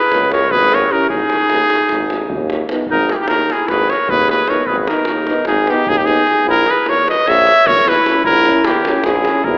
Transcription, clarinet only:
0.00 0.32 G#4 medium
0.33 0.54 A#4 medium
0.52 0.75 G#4 medium
0.73 0.93 A#4 medium
0.91 1.10 G4 medium
1.11 2.48 D#4 medium
2.90 3.14 D#4 loud
3.14 3.18 D#4 soft
3.14 3.23 E4 soft
3.21 3.32 D#4 medium
3.32 3.55 D#4 medium
3.53 3.73 E4 medium
3.72 3.95 G#4 medium
3.93 4.13 A#4 medium
4.11 4.31 G#4 medium
4.32 4.51 G#4 medium
4.50 4.70 A#4 medium
4.68 4.82 G#4 loud
4.82 4.91 G#4 soft
4.90 5.46 D#4 medium
5.47 5.71 D#4 medium
5.71 5.87 D#4 medium
5.87 5.96 D#4 medium
5.96 6.03 D#4 medium
6.03 6.46 D#4 medium
6.47 6.68 E4 loud
6.66 6.89 G#4 medium
6.88 7.05 A#4 medium
7.06 7.27 B4 medium
7.26 7.68 C#5 loud
7.67 7.88 A#4 medium
7.87 8.23 E4 loud
8.24 8.66 E4 loud
8.66 9.06 E4 medium
9.06 9.46 E4 medium
9.46 9.58 E4 medium

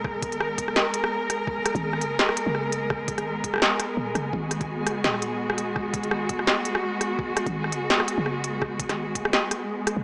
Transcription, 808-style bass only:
0.00 0.34 D#1 medium
0.32 0.59 G#1 loud
0.58 0.75 F#1 medium
1.75 2.02 G#1 loud
2.01 2.18 F#1 medium
2.46 3.19 F#1 medium
3.18 3.45 G#1 loud
3.44 3.60 F#1 medium
3.97 4.14 D#1 medium
4.15 4.32 F#1 loud
4.33 4.88 G#1 loud
4.86 5.03 F#1 medium
5.04 6.05 D#1 medium
6.04 6.31 G#1 loud
6.29 6.46 F#1 medium
7.46 7.74 G#1 loud
7.72 7.89 F#1 medium
8.18 8.91 F#1 medium
8.89 9.17 G#1 loud
9.15 9.32 F#1 medium
9.97 10.04 D#1 medium

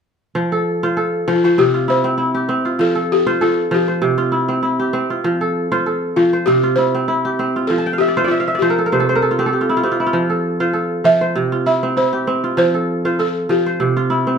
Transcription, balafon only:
1.28 1.34 F4 medium
1.36 1.44 F4 medium
1.45 1.57 F4 medium
1.59 1.90 G4 medium
1.90 2.84 C5 medium
2.81 3.09 A4 medium
3.12 3.43 G4 medium
3.42 3.70 F4 medium
3.74 4.30 G4 medium
6.16 6.45 F4 medium
6.46 6.78 G4 medium
6.76 7.71 C5 medium
7.67 8.00 A4 medium
7.98 8.30 G4 medium
8.28 8.57 F4 medium
8.59 9.17 G4 medium
11.05 11.62 E5 loud
11.67 11.98 E5 medium
11.97 12.57 C5 medium
12.58 13.21 C5 medium
13.20 13.48 A4 medium
13.50 14.38 G4 medium

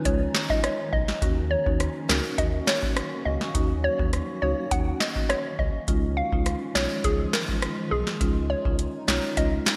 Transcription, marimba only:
0.05 0.25 G#3 medium
0.05 0.25 C#4 medium
0.05 0.25 D#4 medium
0.05 0.26 F4 loud
0.50 0.69 G#3 medium
0.50 0.69 C#4 medium
0.50 0.69 D#4 medium
0.50 0.69 F4 medium
1.22 1.42 A#3 medium
1.22 1.42 C#4 medium
1.22 1.42 D#4 medium
1.22 1.42 F#4 loud
1.66 1.85 A#3 medium
1.66 1.85 C#4 medium
1.66 1.85 D#4 medium
1.66 1.85 F#4 medium
2.09 2.29 A#3 medium
2.09 2.29 C#4 medium
2.09 2.29 D#4 medium
2.09 2.29 F#4 medium
2.38 2.58 A#3 loud
2.38 2.58 C#4 medium
2.38 2.58 D#4 medium
2.38 2.58 F#4 loud
2.83 3.02 A#3 medium
2.83 3.02 C#4 medium
2.83 3.02 D#4 medium
2.83 3.02 F#4 medium
3.54 3.75 A#3 loud
3.54 3.75 C#4 medium
3.54 3.75 D#4 medium
3.54 3.75 F#4 loud
3.99 4.18 A#3 medium
3.99 4.18 C#4 medium
3.99 4.18 D#4 medium
3.99 4.18 F#4 medium
4.42 4.62 A#3 medium
4.42 4.62 C#4 medium
4.42 4.62 D#4 medium
4.42 4.62 F#4 medium
4.71 4.91 A#3 loud
4.71 4.91 C#4 medium
4.71 4.91 D#4 medium
4.71 4.92 F#4 loud
5.16 5.35 A#3 medium
5.16 5.35 C#4 medium
5.16 5.35 D#4 medium
5.16 5.35 F#4 medium
5.88 6.08 G#3 medium
5.88 6.08 C#4 medium
5.88 6.08 D#4 medium
5.88 6.08 F4 loud
6.32 6.51 G#3 medium
6.32 6.51 C#4 medium
6.32 6.51 D#4 medium
6.32 6.52 F4 medium
6.75 6.95 G#3 medium
6.75 6.95 C#4 medium
6.75 6.95 D#4 medium
6.75 6.95 F4 medium
7.04 7.24 G#3 medium
7.04 7.24 C#4 medium
7.04 7.24 D#4 medium
7.04 7.25 F4 loud
7.49 7.68 G#3 medium
7.49 7.68 C#4 medium
7.49 7.68 D#4 medium
7.49 7.68 F4 medium
8.21 8.41 G#3 medium
8.21 8.41 C#4 medium
8.21 8.41 D#4 medium
8.21 8.41 F4 loud
8.65 8.84 G#3 medium
8.65 8.84 C#4 medium
8.65 8.84 D#4 medium
8.65 8.85 F4 medium
9.08 9.28 G#3 medium
9.08 9.28 C#4 medium
9.08 9.28 D#4 medium
9.08 9.28 F4 medium
9.37 9.57 G#3 medium
9.37 9.57 C#4 medium
9.37 9.57 D#4 medium
9.37 9.58 F4 loud

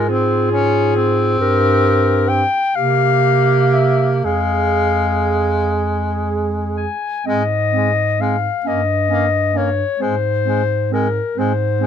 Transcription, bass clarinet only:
0.00 1.35 G#2 soft
1.39 2.44 G2 medium
2.76 4.20 C3 medium
4.24 6.87 F2 soft
7.26 8.49 G#2 medium
8.66 9.84 G2 medium
10.01 11.21 G#2 soft
11.37 11.87 G#2 medium

